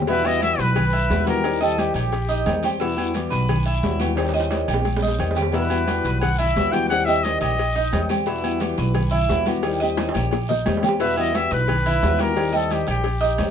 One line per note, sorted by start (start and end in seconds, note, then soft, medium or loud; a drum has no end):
0.00 0.53 E2 medium
0.00 low bongo medium
0.07 0.24 B2 medium
0.07 0.25 E3 medium
0.07 0.25 G3 medium
0.07 0.24 B3 medium
0.07 0.41 E4 medium
0.07 0.23 F#4 medium
0.07 0.28 B4 loud
0.07 cowbell loud
0.07 high conga soft
0.07 low agogo medium
0.07 long guiro medium
0.07 maracas medium
0.25 0.40 E3 medium
0.25 0.41 G3 medium
0.25 0.41 B3 medium
0.25 0.41 F#4 medium
0.25 0.42 D#5 medium
0.25 high conga soft
0.25 low agogo loud
0.42 0.75 E3 soft
0.42 0.75 G3 medium
0.42 0.75 B3 medium
0.42 0.75 F#4 medium
0.42 0.59 G4 medium
0.42 0.62 E5 loud
0.42 cowbell medium
0.42 high conga loud
0.42 low timbale medium
0.42 low agogo medium
0.42 short guiro medium
0.42 maracas medium
0.58 1.06 B1 loud
0.58 0.92 B4 medium
0.58 1.27 B4 loud
0.58 cowbell medium
0.58 short guiro medium
0.58 maracas soft
0.76 muted nylon-string guitar stroke medium
0.76 cowbell loud
0.76 high conga soft
0.76 low conga medium
0.76 low agogo loud
0.76 long guiro medium
0.76 maracas medium
0.93 1.26 E4 medium
0.93 high conga soft
0.93 low agogo medium
0.93 maracas medium
1.09 1.90 D#2 medium
1.09 1.26 E3 medium
1.09 1.26 G3 medium
1.09 1.26 B3 medium
1.09 1.25 F#4 medium
1.09 cowbell medium
1.09 high conga medium
1.09 low timbale medium
1.09 short guiro medium
1.09 maracas medium
1.26 1.44 E3 medium
1.26 1.44 G3 medium
1.26 1.44 B3 medium
1.26 1.43 F#4 medium
1.26 1.60 G4 medium
1.26 1.64 A#4 loud
1.26 cowbell medium
1.26 high conga medium
1.26 low agogo medium
1.26 short guiro medium
1.26 maracas soft
1.44 1.61 D#3 medium
1.44 1.61 G3 medium
1.44 1.61 C4 medium
1.44 1.60 G4 medium
1.44 cowbell loud
1.44 low agogo loud
1.44 long guiro medium
1.44 maracas medium
1.61 1.77 G3 medium
1.61 1.78 C4 medium
1.61 1.78 G4 medium
1.61 1.81 A4 medium
1.61 1.94 D#5 medium
1.61 high conga soft
1.61 maracas medium
1.78 2.11 D#3 medium
1.78 2.11 G3 medium
1.78 2.11 C4 medium
1.78 1.95 G4 medium
1.78 2.11 G4 medium
1.78 cowbell medium
1.78 high conga loud
1.78 low timbale medium
1.78 low agogo medium
1.78 short guiro medium
1.78 maracas medium
1.94 2.43 A#1 medium
1.94 2.28 G4 medium
1.94 2.60 G4 medium
1.94 high conga soft
1.94 low agogo loud
1.94 short guiro medium
1.94 maracas soft
2.12 muted nylon-string guitar stroke medium
2.12 cowbell loud
2.12 high conga soft
2.12 low agogo medium
2.12 long guiro medium
2.12 maracas medium
2.29 2.62 D#4 medium
2.29 high conga soft
2.29 maracas medium
2.46 3.26 E2 medium
2.46 2.63 D#3 soft
2.46 2.63 G3 soft
2.46 2.64 C4 medium
2.46 2.63 G4 medium
2.46 cowbell medium
2.46 high conga medium
2.46 low timbale medium
2.46 low agogo loud
2.46 short guiro medium
2.46 maracas medium
2.63 2.80 G3 medium
2.63 2.81 C4 medium
2.63 2.80 G4 medium
2.63 cowbell medium
2.63 high conga medium
2.63 low agogo medium
2.63 short guiro medium
2.63 maracas soft
2.80 2.97 B2 medium
2.80 2.97 E3 medium
2.80 2.97 G3 medium
2.80 2.96 B3 medium
2.80 3.13 E4 medium
2.80 2.96 F#4 medium
2.80 cowbell loud
2.80 high conga soft
2.80 low agogo medium
2.80 long guiro medium
2.80 maracas medium
2.97 3.13 E3 medium
2.97 3.13 G3 medium
2.97 3.14 B3 medium
2.97 3.14 F#4 medium
2.97 high conga soft
2.97 low agogo loud
2.97 maracas medium
3.14 3.48 E3 medium
3.14 3.48 G3 medium
3.14 3.48 B3 medium
3.14 3.48 F#4 medium
3.14 3.31 G4 medium
3.14 cowbell medium
3.14 high conga loud
3.14 low timbale medium
3.14 low agogo medium
3.14 short guiro medium
3.14 maracas medium
3.30 3.80 B1 medium
3.30 3.64 B4 medium
3.30 cowbell medium
3.30 high conga soft
3.30 short guiro medium
3.30 maracas soft
3.48 muted nylon-string guitar stroke medium
3.48 cowbell loud
3.48 high conga soft
3.48 low conga medium
3.48 low agogo loud
3.48 long guiro medium
3.48 maracas medium
3.65 3.99 E4 medium
3.65 high conga soft
3.65 low agogo medium
3.83 4.63 D#2 medium
3.83 3.99 E3 soft
3.83 3.99 G3 soft
3.83 3.99 B3 medium
3.83 3.99 F#4 medium
3.83 cowbell medium
3.83 high conga medium
3.83 low timbale medium
3.83 short guiro medium
3.83 maracas medium
4.00 4.15 E3 medium
4.00 4.15 G3 medium
4.00 4.16 B3 medium
4.00 4.16 F#4 medium
4.00 4.33 G4 medium
4.00 cowbell medium
4.00 high conga medium
4.00 low agogo medium
4.00 short guiro medium
4.00 maracas soft
4.15 4.33 D#3 medium
4.15 4.33 G3 medium
4.15 4.33 C4 medium
4.15 4.34 G4 medium
4.15 cowbell loud
4.15 high timbale loud
4.15 low agogo loud
4.15 long guiro medium
4.15 maracas medium
4.29 high timbale medium
4.34 4.49 G3 medium
4.34 4.50 C4 medium
4.34 4.50 G4 medium
4.34 4.67 D#5 medium
4.34 high conga soft
4.34 maracas medium
4.40 high timbale loud
4.50 4.83 D#3 medium
4.50 4.83 G3 medium
4.50 4.84 C4 medium
4.50 4.84 G4 medium
4.50 cowbell medium
4.50 high conga loud
4.50 high timbale loud
4.50 low agogo medium
4.50 short guiro medium
4.50 maracas medium
4.68 5.16 A#1 medium
4.68 5.02 G4 medium
4.68 high conga soft
4.68 low agogo loud
4.68 short guiro medium
4.68 maracas soft
4.74 low timbale medium
4.84 muted nylon-string guitar stroke medium
4.84 cowbell loud
4.84 high conga medium
4.84 low agogo medium
4.84 long guiro medium
4.84 maracas medium
4.97 low timbale medium
5.02 5.36 D#4 medium
5.02 high conga medium
5.02 maracas medium
5.08 low timbale medium
5.19 5.99 E2 loud
5.19 5.36 D#3 soft
5.19 5.36 G3 medium
5.19 5.35 C4 medium
5.19 5.34 G4 medium
5.19 cowbell medium
5.19 low agogo loud
5.19 short guiro medium
5.19 maracas medium
5.31 low timbale medium
5.35 5.51 G3 medium
5.35 5.52 C4 medium
5.35 5.53 G4 medium
5.35 cowbell medium
5.35 low conga medium
5.35 low agogo medium
5.35 short guiro medium
5.35 maracas soft
5.42 low timbale loud
5.52 5.69 B2 medium
5.52 5.69 E3 medium
5.52 5.69 G3 medium
5.52 5.69 B3 medium
5.52 5.87 E4 medium
5.52 5.69 F#4 medium
5.52 6.18 B4 medium
5.52 cowbell loud
5.52 high conga soft
5.52 low agogo medium
5.52 long guiro medium
5.52 maracas medium
5.70 5.86 E3 medium
5.70 5.86 G3 medium
5.70 5.86 B3 medium
5.70 5.87 F#4 medium
5.70 high conga soft
5.70 low agogo loud
5.70 maracas medium
5.87 6.20 E3 medium
5.87 6.21 G3 medium
5.87 6.21 B3 medium
5.87 6.21 F#4 medium
5.87 6.05 G4 medium
5.87 cowbell medium
5.87 high conga loud
5.87 low timbale medium
5.87 low agogo medium
5.87 short guiro medium
5.87 maracas medium
6.04 6.52 B1 medium
6.04 6.38 B4 medium
6.04 cowbell medium
6.04 high conga soft
6.04 short guiro medium
6.04 maracas soft
6.21 6.40 F#5 medium
6.21 muted nylon-string guitar stroke medium
6.21 cowbell loud
6.21 high conga soft
6.21 low conga medium
6.21 low agogo loud
6.21 long guiro medium
6.21 maracas medium
6.38 6.72 E4 medium
6.38 6.73 E5 loud
6.38 high conga soft
6.38 low conga medium
6.38 low agogo medium
6.56 7.36 D#2 loud
6.56 6.73 E3 soft
6.56 6.73 G3 soft
6.56 6.72 B3 medium
6.56 6.71 F#4 medium
6.56 cowbell medium
6.56 high conga medium
6.56 low timbale medium
6.56 short guiro medium
6.56 maracas medium
6.72 6.90 E3 medium
6.72 6.90 G3 medium
6.72 6.90 B3 medium
6.72 6.89 F#4 medium
6.72 7.06 G4 medium
6.72 6.88 G5 loud
6.72 cowbell medium
6.72 high conga medium
6.72 low agogo medium
6.72 short guiro medium
6.72 maracas soft
6.89 7.07 D#3 medium
6.89 7.07 G3 medium
6.89 7.07 C4 medium
6.89 7.06 G4 medium
6.89 7.07 F#5 loud
6.89 cowbell loud
6.89 low agogo loud
6.89 long guiro medium
6.89 maracas medium
7.05 7.25 G3 medium
7.05 7.24 C4 medium
7.05 7.24 G4 medium
7.05 7.40 D#5 medium
7.05 7.25 E5 loud
7.05 high conga soft
7.05 maracas medium
7.23 7.58 D#3 medium
7.23 7.58 G3 medium
7.23 7.58 C4 medium
7.23 7.58 G4 medium
7.23 7.40 D#5 loud
7.23 cowbell medium
7.23 high conga medium
7.23 low timbale medium
7.23 low agogo medium
7.23 short guiro medium
7.23 maracas medium
7.41 7.89 A#1 medium
7.41 7.74 G4 medium
7.41 8.06 D#5 loud
7.41 high conga soft
7.41 low agogo loud
7.41 short guiro medium
7.41 maracas soft
7.58 muted nylon-string guitar stroke medium
7.58 cowbell loud
7.58 high conga soft
7.58 low agogo medium
7.58 long guiro medium
7.58 maracas medium
7.76 8.09 D#4 medium
7.76 high conga soft
7.92 8.72 E2 medium
7.92 8.09 D#3 medium
7.92 8.09 G3 medium
7.92 8.09 C4 medium
7.92 8.09 G4 medium
7.92 cowbell medium
7.92 high conga medium
7.92 low timbale medium
7.92 low agogo loud
7.92 short guiro medium
7.92 maracas medium
8.09 8.26 G3 medium
8.09 8.26 C4 medium
8.09 8.26 G4 medium
8.09 cowbell medium
8.09 high conga medium
8.09 low agogo medium
8.09 short guiro medium
8.09 maracas soft
8.26 8.43 B2 medium
8.26 8.43 E3 medium
8.26 8.43 G3 medium
8.26 8.42 B3 medium
8.26 8.60 E4 medium
8.26 8.42 F#4 medium
8.26 cowbell loud
8.26 low agogo medium
8.26 long guiro medium
8.26 maracas medium
8.43 8.60 E3 medium
8.43 8.61 G3 medium
8.43 8.60 B3 medium
8.43 8.60 F#4 medium
8.43 high conga soft
8.43 low agogo loud
8.60 8.94 E3 medium
8.60 8.95 G3 medium
8.60 8.94 B3 medium
8.60 8.94 F#4 medium
8.60 8.77 G4 medium
8.60 cowbell medium
8.60 high conga medium
8.60 low timbale medium
8.60 low agogo medium
8.60 short guiro medium
8.60 maracas medium
8.78 9.26 B1 loud
8.78 9.10 B4 medium
8.78 cowbell medium
8.78 high conga soft
8.78 short guiro medium
8.78 maracas soft
8.94 muted nylon-string guitar stroke medium
8.94 cowbell loud
8.94 high conga soft
8.94 low conga medium
8.94 low agogo loud
8.94 long guiro medium
8.94 maracas medium
9.11 9.45 E4 medium
9.11 high conga soft
9.11 low conga medium
9.11 low agogo medium
9.11 maracas medium
9.29 10.09 D#2 medium
9.29 9.45 E3 soft
9.29 9.46 G3 medium
9.29 9.46 B3 medium
9.29 9.46 F#4 medium
9.29 cowbell medium
9.29 high conga medium
9.29 low timbale medium
9.29 short guiro medium
9.29 maracas medium
9.46 9.64 E3 medium
9.46 9.63 G3 medium
9.46 9.63 B3 medium
9.46 9.63 F#4 medium
9.46 9.79 G4 medium
9.46 cowbell medium
9.46 high conga medium
9.46 low agogo medium
9.46 short guiro medium
9.46 maracas soft
9.63 9.81 D#3 medium
9.63 9.81 G3 medium
9.63 9.81 C4 medium
9.63 cowbell loud
9.63 low agogo loud
9.63 long guiro medium
9.63 maracas medium
9.67 9.81 G4 medium
9.80 9.98 G3 medium
9.80 9.98 C4 medium
9.80 9.98 G4 medium
9.80 10.13 D#5 medium
9.80 high conga soft
9.80 maracas medium
9.97 10.31 D#3 soft
9.97 10.32 G3 soft
9.97 10.32 C4 medium
9.97 10.32 G4 medium
9.97 cowbell medium
9.97 high bongo loud
9.97 high conga loud
9.97 high timbale loud
9.97 low agogo medium
9.97 short guiro medium
9.97 maracas medium
10.09 high timbale medium
10.14 10.63 A#1 medium
10.14 10.48 G4 medium
10.14 high bongo medium
10.14 high conga soft
10.14 low agogo loud
10.14 short guiro medium
10.14 maracas soft
10.31 muted nylon-string guitar stroke medium
10.31 cowbell loud
10.31 high bongo medium
10.31 high conga soft
10.31 low agogo medium
10.31 long guiro medium
10.31 maracas medium
10.49 10.82 D#4 medium
10.49 low bongo loud
10.49 high conga soft
10.49 maracas medium
10.65 11.46 E2 medium
10.65 10.82 D#3 soft
10.65 10.82 G3 medium
10.65 10.83 C4 medium
10.65 10.82 G4 medium
10.65 cowbell medium
10.65 low bongo medium
10.65 high conga medium
10.65 low timbale medium
10.65 low agogo loud
10.65 short guiro medium
10.65 maracas medium
10.77 low timbale medium
10.83 10.99 G3 medium
10.83 11.00 C4 medium
10.83 11.00 G4 medium
10.83 10.99 G4 medium
10.83 cowbell medium
10.83 low bongo medium
10.83 high conga medium
10.83 low agogo medium
10.83 short guiro medium
10.83 maracas soft
10.89 low timbale medium
11.00 11.16 B2 medium
11.00 11.17 E3 medium
11.00 11.17 G3 medium
11.00 11.17 B3 medium
11.00 11.33 E4 medium
11.00 11.16 F#4 medium
11.00 11.16 B4 loud
11.00 cowbell loud
11.00 high conga soft
11.00 low agogo medium
11.00 long guiro medium
11.00 maracas medium
11.17 11.32 E3 medium
11.17 11.33 G3 medium
11.17 11.34 B3 medium
11.17 11.34 F#4 medium
11.17 11.37 D#5 loud
11.17 high conga soft
11.17 low agogo loud
11.33 11.66 E3 soft
11.33 11.67 G3 medium
11.33 11.67 B3 medium
11.33 11.67 F#4 medium
11.33 11.51 G4 medium
11.33 11.54 E5 loud
11.33 cowbell medium
11.33 high conga loud
11.33 low timbale medium
11.33 low agogo medium
11.33 short guiro medium
11.33 maracas medium
11.51 11.99 B1 medium
11.51 11.84 B4 medium
11.51 12.20 B4 loud
11.51 cowbell medium
11.51 high conga soft
11.51 short guiro medium
11.51 maracas soft
11.67 muted nylon-string guitar stroke medium
11.67 cowbell loud
11.67 high conga soft
11.67 low conga medium
11.67 low agogo loud
11.67 long guiro medium
11.67 maracas medium
11.86 12.19 E4 medium
11.86 high conga soft
11.86 low conga medium
11.86 low agogo medium
11.86 maracas medium
12.02 12.82 D#2 medium
12.02 12.19 E3 medium
12.02 12.19 G3 medium
12.02 12.19 B3 medium
12.02 12.18 F#4 medium
12.02 cowbell medium
12.02 high conga medium
12.02 low timbale medium
12.02 short guiro medium
12.02 maracas medium
12.19 12.36 E3 medium
12.19 12.35 G3 medium
12.19 12.36 B3 medium
12.19 12.36 F#4 medium
12.19 12.52 G4 medium
12.19 12.58 A#4 medium
12.19 cowbell medium
12.19 high conga medium
12.19 low agogo medium
12.19 short guiro medium
12.19 maracas soft
12.36 12.53 D#3 medium
12.36 12.53 G3 medium
12.36 12.53 C4 medium
12.36 12.52 G4 medium
12.36 cowbell loud
12.36 low agogo loud
12.36 long guiro medium
12.36 maracas medium
12.52 12.70 G3 medium
12.52 12.70 C4 medium
12.52 12.70 G4 medium
12.52 12.74 A4 medium
12.52 12.86 D#5 medium
12.52 high conga soft
12.71 13.04 D#3 medium
12.71 13.04 G3 medium
12.71 13.05 C4 medium
12.71 13.05 G4 medium
12.71 12.89 G4 medium
12.71 cowbell medium
12.71 high conga medium
12.71 low timbale medium
12.71 low agogo medium
12.71 short guiro medium
12.71 maracas medium
12.87 13.36 A#1 medium
12.87 13.21 G4 medium
12.87 13.51 G4 medium
12.87 high conga soft
12.87 low agogo loud
12.87 short guiro medium
12.87 maracas soft
13.04 muted nylon-string guitar stroke medium
13.04 cowbell loud
13.04 high conga soft
13.04 low agogo medium
13.04 long guiro medium
13.04 maracas medium
13.21 13.51 D#4 medium
13.21 high conga soft
13.21 maracas medium
13.38 13.51 E2 medium
13.38 13.51 D#3 soft
13.38 13.51 G3 medium
13.38 13.51 C4 medium
13.38 13.51 G4 medium
13.38 cowbell medium
13.38 high conga medium
13.38 low timbale medium
13.38 low agogo loud
13.38 short guiro medium
13.38 maracas medium